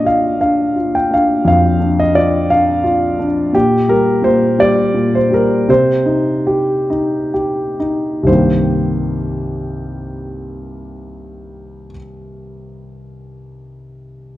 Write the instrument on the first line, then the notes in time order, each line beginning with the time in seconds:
grand piano
Already playing: A#2 D4 D5 D#5
0.04 F4 F5
0.40 D4 F5
0.76 F4
0.95 G5
1.11 D4 F5
1.45 F2 F5
1.80 D4
2.00 D#5
2.14 F4 D5
2.50 D4 F5
2.84 F4
3.19 D4
3.53 A#2 G4
3.89 G3 A#4
4.22 A#2 C5
4.58 G3 D5
4.94 A#2
5.15 C5
5.30 G3 A#4
5.68 C3 C5
6.06 D#4
6.47 G4
6.90 D#4
7.34 G4
7.80 D#4
8.23 C2 G2 D#3 C5
8.28 A#3 C4
8.33 G4